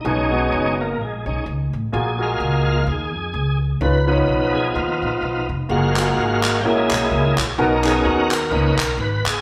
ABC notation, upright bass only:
X:1
M:4/4
L:1/8
Q:"Swing" 1/4=128
K:F#
V:1 name="Upright bass" clef=bass
B,,,2 F,,,2 A,,, B,,, C,, =A,,, | A,,,2 C,,2 D,, E,, C,,2 | C,,2 B,,,2 D,, A,,, B,,, E,,, | F,,,2 G,,,2 A,,, B,,, C,, A,,, |
B,,,2 D,,2 C,, B,,, G,,, =G,,, |]